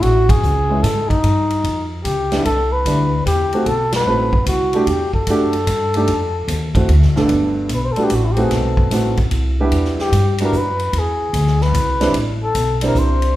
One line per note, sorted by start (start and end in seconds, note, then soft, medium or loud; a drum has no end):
0.02 0.42 A1 medium
0.02 0.31 F#4 medium
0.02 kick soft
0.02 ride medium
0.29 0.84 G#4 medium
0.29 kick medium
0.29 ride medium
0.43 0.83 C#2 medium
0.43 hi-hat pedal soft
0.70 0.83 G#3 medium
0.70 0.83 B3 soft
0.70 0.83 C#4 soft
0.70 0.83 E4 medium
0.83 1.23 G#2 medium
0.83 1.11 A4 medium
0.83 kick soft
0.83 snare soft
0.83 hi-hat pedal soft
0.83 ride medium
1.09 1.90 D#4 medium
1.09 kick soft
1.09 ride soft
1.23 1.63 G2 medium
1.23 kick soft
1.23 ride medium
1.50 ride soft
1.64 2.03 F2 medium
1.64 kick soft
1.64 ride medium
2.04 2.44 C#2 medium
2.04 2.42 G4 medium
2.04 kick soft
2.04 hi-hat pedal soft
2.04 ride medium
2.32 2.44 G3 medium
2.32 2.44 B3 medium
2.32 2.44 D4 medium
2.32 2.44 E4 medium
2.32 snare soft
2.32 ride soft
2.45 2.84 C2 medium
2.45 2.74 A4 medium
2.45 kick soft
2.45 ride medium
2.73 3.26 B4 medium
2.85 3.25 D2 medium
2.85 3.10 G3 soft
2.85 3.10 B3 soft
2.85 3.10 D4 soft
2.85 3.10 E4 medium
2.85 kick soft
2.85 hi-hat pedal soft
2.85 ride medium
3.26 3.65 E2 medium
3.26 3.69 G4 medium
3.26 kick soft
3.26 hi-hat pedal medium
3.26 ride medium
3.53 3.65 A3 medium
3.53 3.66 C4 medium
3.53 3.66 D#4 medium
3.53 3.66 F#4 medium
3.53 ride soft
3.66 4.05 B1 medium
3.66 3.93 A4 medium
3.66 kick soft
3.66 ride medium
3.92 4.44 B4 medium
3.92 snare medium
3.92 ride medium
4.06 4.46 A1 medium
4.06 4.31 A3 medium
4.06 4.31 C4 medium
4.06 4.31 D#4 soft
4.06 4.32 F#4 medium
4.33 kick medium
4.46 4.86 C2 medium
4.46 4.89 F#4 medium
4.46 kick soft
4.46 hi-hat pedal soft
4.46 ride medium
4.73 4.86 A3 medium
4.73 4.87 D4 medium
4.73 4.87 F#4 medium
4.73 4.87 G4 medium
4.73 ride soft
4.87 5.26 E2 medium
4.87 5.14 G4 medium
4.87 kick soft
4.87 ride medium
5.13 6.85 A4 medium
5.13 kick soft
5.27 5.66 F#2 medium
5.27 5.52 A3 medium
5.27 5.53 D4 medium
5.27 5.53 F#4 medium
5.27 5.53 G4 medium
5.27 kick soft
5.27 hi-hat pedal medium
5.27 ride medium
5.53 ride soft
5.67 6.06 G2 medium
5.67 kick soft
5.67 hi-hat pedal medium
5.67 ride medium
5.94 6.07 A3 medium
5.94 6.08 D4 medium
5.94 6.08 D#4 medium
5.94 6.08 G4 medium
5.94 ride soft
6.07 6.47 F2 medium
6.07 kick soft
6.07 ride medium
6.48 6.87 D#2 medium
6.48 kick soft
6.48 hi-hat pedal medium
6.48 ride medium
6.75 6.88 A3 medium
6.75 6.88 C4 medium
6.75 6.88 E4 soft
6.75 6.89 F#4 medium
6.75 kick medium
6.75 ride soft
6.89 7.04 D2 medium
6.89 kick soft
6.89 ride medium
7.02 7.16 C2 medium
7.02 snare soft
7.16 7.28 A1 medium
7.16 7.67 G2 medium
7.16 7.68 A3 medium
7.16 7.68 B3 medium
7.16 7.68 D4 medium
7.16 7.68 A4 medium
7.16 snare soft
7.29 7.68 G1 medium
7.29 kick soft
7.29 ride medium
7.69 7.94 B1 medium
7.69 kick soft
7.69 hi-hat pedal soft
7.69 ride medium
7.74 7.86 B4 medium
7.84 7.93 C5 medium
7.92 8.05 A4 medium
7.96 8.09 G3 medium
7.96 8.10 A3 medium
7.96 8.10 B3 medium
7.96 8.10 D4 medium
7.96 8.10 F#4 medium
7.96 muted upright bass stroke soft
7.96 ride soft
8.04 8.17 G4 medium
8.10 8.49 A1 medium
8.10 kick soft
8.10 hi-hat pedal soft
8.10 ride medium
8.15 8.26 F#4 medium
8.25 8.34 E4 medium
8.32 8.46 G4 medium
8.37 8.89 A3 medium
8.37 8.88 B3 medium
8.37 8.89 C4 medium
8.37 8.89 D#4 medium
8.37 8.89 F#4 medium
8.37 ride soft
8.44 8.56 G#4 medium
8.50 8.90 B1 medium
8.50 kick soft
8.50 snare soft
8.50 ride medium
8.54 9.20 A4 medium
8.77 kick soft
8.91 9.30 A1 medium
8.91 9.16 A3 medium
8.91 9.16 B3 medium
8.91 9.16 C4 medium
8.91 9.16 D#4 medium
8.91 9.17 F#4 medium
8.91 kick soft
8.91 snare soft
8.91 hi-hat pedal medium
8.91 ride medium
9.17 kick soft
9.17 ride soft
9.31 9.71 C2 medium
9.31 kick soft
9.31 ride medium
9.60 10.11 G3 medium
9.60 10.11 B3 medium
9.60 10.11 D4 medium
9.60 10.11 E4 medium
9.60 10.11 G4 medium
9.72 10.11 E2 medium
9.72 kick soft
9.72 ride medium
9.85 snare soft
9.99 10.38 G4 medium
9.99 snare soft
10.12 10.52 G2 medium
10.12 kick soft
10.12 hi-hat pedal medium
10.12 ride medium
10.38 10.52 G3 medium
10.38 10.53 B3 medium
10.38 10.53 D4 medium
10.38 10.53 E4 medium
10.38 10.53 F#4 medium
10.38 ride medium
10.43 10.58 A#4 medium
10.52 10.92 F#2 medium
10.52 kick soft
10.52 hi-hat pedal medium
10.57 11.00 B4 loud
10.79 ride soft
10.93 11.33 E2 medium
10.93 kick soft
10.93 ride medium
10.99 11.64 G#4 medium
11.33 11.73 D2 medium
11.33 kick soft
11.33 hi-hat pedal medium
11.33 ride medium
11.47 snare soft
11.61 12.16 B4 loud
11.61 snare soft
11.73 12.13 C2 medium
11.73 kick soft
11.73 hi-hat pedal medium
11.73 ride medium
12.00 12.13 G3 medium
12.00 12.13 C4 medium
12.00 12.14 D4 medium
12.00 12.14 E4 medium
12.00 12.14 B4 medium
12.00 snare medium
12.00 ride soft
12.14 12.54 A1 medium
12.14 kick soft
12.14 ride medium
12.43 12.80 A4 medium
12.55 12.95 B1 medium
12.55 kick soft
12.55 hi-hat pedal medium
12.55 ride medium
12.81 13.34 G3 medium
12.81 13.34 C4 medium
12.81 13.34 D4 medium
12.81 13.34 E4 medium
12.81 13.35 C5 medium
12.81 ride medium
12.85 13.00 A#4 medium
12.95 13.35 C2 medium
12.95 13.36 C5 medium
12.95 kick soft
12.95 hi-hat pedal soft
13.22 ride soft